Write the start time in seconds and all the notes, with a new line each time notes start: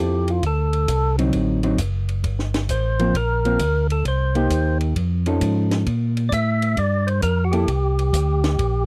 Already playing: F2 F3 C4 E4 G4 A4
0.28 F4, ride
0.43 D2 A4, kick, ride
0.73 ride
0.88 C2, kick, hi-hat pedal, ride
1.18 D3 F#3 C4 D#4, ride
1.33 A1, kick, ride
1.63 D3 F#3 C4 D#4, ride
1.78 F#1, kick, hi-hat pedal, ride
2.09 ride
2.24 G1, kick, ride
2.39 snare
2.54 snare, ride
2.69 A1 C5, kick, hi-hat pedal, ride
2.99 F3 A#3 C4, ride
3.14 A#1 A#4, kick, ride
3.45 F3 A#3 C4, ride
3.59 D2, kick, hi-hat pedal, ride
3.90 A4, ride
4.05 C2 C5, kick, ride
4.35 A#3 D#4 G4, ride
4.50 D#2, kick, hi-hat pedal, ride
4.81 ride
4.96 F2, kick, ride
5.26 F3 C#4 D#4 A4, ride
5.41 G#2, kick, hi-hat pedal, ride
5.71 snare, ride
5.86 A#2, kick, ride
6.17 ride
6.29 A2 D5, kick, hi-hat pedal, ride
6.33 E5
6.62 ride
6.77 G2 D5, kick, ride
7.07 C5, ride
7.22 F2 A#4, kick, hi-hat pedal, ride
7.44 F#4
7.51 A#3 E4 G4 A4, ride
7.68 C2, kick, ride
7.99 ride
8.13 D2, kick, hi-hat pedal, ride
8.44 snare, ride
8.59 A#1, kick, ride